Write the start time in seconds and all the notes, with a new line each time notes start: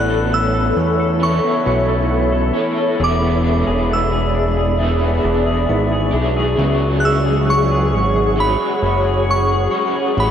Already playing: A1 E3 A3 B3 C#4 E4 A4 C#5 E5 B5 F#6
0.09 A4
0.32 B3 E6
0.54 A4
0.77 E2 C#4
1.00 A4
1.20 E3 B3 E4 A4 C#6
1.24 A4 C#5
1.44 B3
1.66 B1 C#4
1.88 A4
2.11 B3
2.32 A4
2.54 C#4 A4 C#5
2.59 E4
2.78 A4
2.98 E1 E3 G#3 B3 G#4 D5
3.03 E4 G#4 D5 D6
3.22 B3
3.44 D4
3.67 E1 G#4
3.89 B3
3.93 E6
4.12 G#4
4.34 D4
4.57 G#4
4.77 E3 B3 E4 G#4 C#6
4.82 D5
5.02 B3
5.25 E1 D4
5.46 G#4
5.69 G#1 B3
5.92 G#4
6.11 B1 D4 E4 G#4 D5
6.16 B3
6.37 G#4
6.55 C#2 C#3 F#3 C#4 C#5 F#5
6.60 F#4 G#4 C#5
6.81 G#3
7.00 C#4 F#6
7.05 E6
7.26 G#4
7.48 G#3 C#6
7.71 G#4
7.93 G#1 C#4
8.16 G#4
8.36 F#3 C#4 F#4 G#4
8.40 G#4 C#5 B5
8.61 G#3
8.83 F#1 C#4
9.06 G#4
9.29 G#3 C#6
9.51 G#4
9.71 C#4 F#4 G#4 C#5
9.76 C#4
9.96 G#4
10.15 A1 E3 A3 C#4 G#4 E5
10.20 E4 C#5 B5